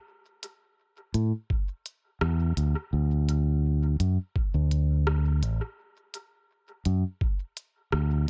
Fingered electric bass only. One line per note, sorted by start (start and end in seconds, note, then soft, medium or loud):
1.14 1.31 A2 medium
2.21 2.53 E2 medium
2.57 2.74 D2 medium
2.93 3.97 D2 medium
4.00 4.17 F#2 medium
4.54 5.43 D2 medium
5.43 5.60 A1 medium
6.86 7.02 F#2 medium
7.93 8.24 D2 medium